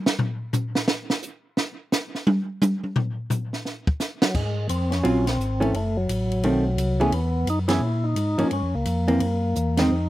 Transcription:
0.06 snare
0.19 floor tom
0.53 floor tom, hi-hat pedal
0.75 snare
0.88 snare
1.10 snare
1.22 hi-hat pedal
1.57 snare
1.92 snare, hi-hat pedal
2.15 snare
2.27 high tom
2.62 hi-hat pedal, high tom
2.84 high tom
2.96 floor tom
3.30 floor tom, hi-hat pedal
3.53 snare
3.65 snare
3.87 kick
4.00 snare, hi-hat pedal
4.22 tonewheel organ F#3, snare
4.35 tonewheel organ G#2 G#3, kick, crash
4.69 tonewheel organ F2 C4, hi-hat pedal, ride
4.90 tonewheel organ C#4, snare, ride
5.03 tonewheel organ A#1, hollow-body jazz guitar F#3 C4 F4, ride
5.27 tonewheel organ C4, snare, ride
5.38 tonewheel organ G#1, hi-hat pedal
5.60 hollow-body jazz guitar E3 A3 C#4, ride
5.73 tonewheel organ F#1 A3, ride
5.97 tonewheel organ F#3
6.09 tonewheel organ A1, hi-hat pedal, ride
6.32 ride
6.43 tonewheel organ B1, hollow-body jazz guitar D#3 A3 C4, ride
6.77 tonewheel organ C2, hi-hat pedal, ride
7.00 hollow-body jazz guitar E3 B3 C#4 G#4, tonewheel organ A3, ride
7.11 tonewheel organ E2 B3, ride
7.46 tonewheel organ F#2 D#4, hi-hat pedal, ride
7.68 hollow-body jazz guitar E3 B3 C#4 G#4, tonewheel organ E4, snare, ride
7.80 tonewheel organ A#2
8.04 tonewheel organ D#4
8.15 tonewheel organ G#2, hi-hat pedal, ride
8.38 tonewheel organ G#2, hollow-body jazz guitar F3 A#3 C#4, ride
8.51 tonewheel organ G2 C#4, ride
8.62 tonewheel organ F2
8.74 tonewheel organ C#2 A#3
8.85 tonewheel organ F2, hi-hat pedal, ride
9.08 hollow-body jazz guitar E3 A#3 C4, ride
9.20 tonewheel organ F#2, ride
9.55 tonewheel organ E2, hi-hat pedal
9.77 hollow-body jazz guitar D#3 G#3 C4, tonewheel organ D#4, snare, ride
9.91 tonewheel organ F2

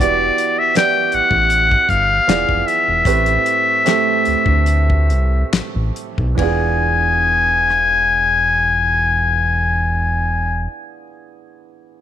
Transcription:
0.00 analog synth bass E1, upright piano E3 B3 F#4 G4 D5, muted trumpet D5, kick, closed hi-hat
0.38 closed hi-hat
0.59 muted trumpet E5
0.75 upright piano E3 B3 E4 G4 D5, muted trumpet G5, snare, clap, closed hi-hat
1.12 analog synth bass A1, muted trumpet F#5, closed hi-hat
1.31 analog synth bass A1, kick
1.50 closed hi-hat
1.71 kick
1.89 analog synth bass G1, muted trumpet F5, kick, closed hi-hat
2.27 analog synth bass E1, upright piano E3 B3 F4 G#4 D5, snare, clap, closed hi-hat
2.49 analog synth bass F1, kick
2.67 muted trumpet E5, closed hi-hat
2.88 analog synth bass E1
3.05 analog synth bass A1, upright piano A2 A3 C4 G4 B4, kick, closed hi-hat
3.26 closed hi-hat
3.46 closed hi-hat
3.85 upright piano A2 A3 C4 G4 A4, snare, clap, closed hi-hat
4.25 analog synth bass D2, closed hi-hat
4.46 analog synth bass D2, kick
4.66 closed hi-hat
4.90 kick
5.10 analog synth bass C2, closed hi-hat
5.52 analog synth bass A1, snare, clap, closed hi-hat
5.75 analog synth bass A1
5.96 closed hi-hat
6.18 analog synth bass B1, kick
6.35 analog synth bass E1, upright piano E3 B3 D4, kick, ride
6.39 upright piano F4 G#4, muted trumpet G#5
7.70 cross-stick

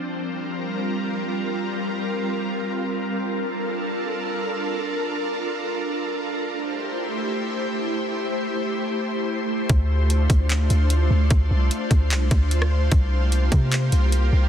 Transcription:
Already playing: ambient pad C4
0.03 ambient pad G3 F4 A#4
3.25 ambient pad D4 F4 A4 A#4
6.47 ambient pad A3 E4 G4 C5
9.69 808-style bass D2, ambient pad D4 F4, kick, closed hi-hat
10.10 closed hi-hat
10.30 808-style bass D2, kick, closed hi-hat
10.50 clap, closed hi-hat
10.70 808-style bass D2, closed hi-hat
10.90 closed hi-hat
11.10 808-style bass D2
11.30 808-style bass D2, kick, closed hi-hat
11.51 808-style bass C2
11.71 closed hi-hat
11.91 808-style bass D2, kick, closed hi-hat
12.11 808-style bass C2, clap, closed hi-hat
12.31 808-style bass D2, kick, closed hi-hat
12.51 closed hi-hat
12.62 cross-stick
12.91 808-style bass C2, ambient pad A#3 G4, kick, closed hi-hat
13.32 closed hi-hat
13.52 808-style bass C3, kick, closed hi-hat
13.72 clap, closed hi-hat
13.92 808-style bass C2, closed hi-hat
14.12 closed hi-hat
14.33 808-style bass C2

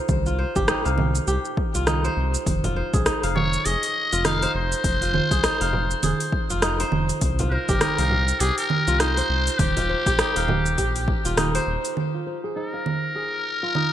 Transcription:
Already playing: kora D#4 F4 G4 C5
0.09 analog synth bass C2, kick, low conga, shaker
0.26 kora F4, shaker
0.39 kora C5
0.56 analog synth bass G1, kora G4, kick, frame drum, shaker
0.68 kora D#4, cross-stick, shaker
0.85 analog synth bass C2, kora F5, shaker
0.98 low conga, frame drum
1.15 shaker
1.28 analog synth bass C2, kora G4, shaker
1.45 shaker
1.57 kick
1.75 analog synth bass C2, kora F4, shaker
1.87 kora D#4, cross-stick, low conga, shaker
2.04 kora C5, shaker
2.17 analog synth bass C2
2.34 shaker
2.47 analog synth bass F1, kick, open hi-hat, low conga, shaker
2.64 kora F4, open hi-hat, frame drum, shaker
2.76 kora C5
2.94 analog synth bass C2, kora G#4, kick, open hi-hat, frame drum, shaker
3.06 kora D#4, cross-stick, open hi-hat, shaker
3.23 analog synth bass F1, kora F5, open hi-hat, shaker
3.36 muted trumpet C#5, low conga, frame drum
3.53 shaker
3.65 analog synth bass F1, kora G#4, muted trumpet D#5, open hi-hat, shaker
3.83 open hi-hat, shaker
4.13 analog synth bass F1, kora F4, shaker
4.25 kora D#4, muted trumpet F5, cross-stick, open hi-hat, low conga, shaker
4.42 kora C5, open hi-hat, shaker
4.55 analog synth bass F1, muted trumpet C5
4.72 open hi-hat, shaker
4.84 analog synth bass F1, kick, open hi-hat, shaker
5.02 kora F4, open hi-hat, shaker
5.14 kora C5, low conga
5.31 analog synth bass C2, kora G#4, kick, open hi-hat, shaker
5.44 kora D#4, cross-stick, open hi-hat, shaker
5.61 analog synth bass F1, kora F5, open hi-hat, shaker
5.73 frame drum
5.91 shaker
6.03 analog synth bass F1, kora G#4, open hi-hat, low conga, shaker
6.20 open hi-hat, shaker
6.33 kick
6.50 analog synth bass F1, kora F4, shaker
6.62 kora D#4, cross-stick, open hi-hat, shaker
6.80 kora C5, open hi-hat, shaker
6.92 analog synth bass F1, low conga
7.09 open hi-hat, shaker
7.21 analog synth bass C2, kick, open hi-hat, shaker
7.39 kora F4, open hi-hat, frame drum, shaker
7.51 muted trumpet A#4, kora C5
7.69 analog synth bass G1, kora G4, kick, open hi-hat, frame drum, shaker
7.81 kora D#4, cross-stick, open hi-hat, low conga, shaker
7.98 analog synth bass C2, kora F5, open hi-hat, shaker
8.11 frame drum
8.28 shaker
8.40 analog synth bass C2, kora G4, muted trumpet G#4, open hi-hat, shaker
8.58 muted trumpet A#4, open hi-hat, shaker
8.70 low conga
8.88 analog synth bass C2, kora F4, shaker
9.00 kora D#4, muted trumpet C5, cross-stick, open hi-hat, shaker
9.17 kora C5, open hi-hat, shaker
9.29 analog synth bass C2
9.47 open hi-hat, shaker
9.59 analog synth bass D#1, muted trumpet G4, kick, open hi-hat, low conga, shaker
9.77 kora F4, open hi-hat, frame drum, shaker
9.89 kora C5
10.06 analog synth bass A#1, kora G4, kick, cross-stick, open hi-hat, shaker
10.19 kora D#4, cross-stick, open hi-hat, shaker
10.36 analog synth bass D#1, kora F5, open hi-hat, shaker
10.48 low conga, frame drum
10.66 shaker
10.78 analog synth bass A#1, kora G4, kick, open hi-hat, shaker
10.96 open hi-hat, shaker
11.08 kick
11.25 analog synth bass D#1, kora F4, open hi-hat, shaker
11.37 kora D#4, cross-stick, open hi-hat, low conga, shaker
11.55 kora C5, open hi-hat, shaker
11.67 analog synth bass D#1
11.85 open hi-hat, shaker
11.97 low conga
12.14 kora F4
12.27 kora C5
12.44 kora G#4
12.56 kora D#4, muted trumpet A#4
12.74 kora F5
12.86 low conga
13.15 kora G#4
13.63 kora F4
13.75 kora D#4, low conga

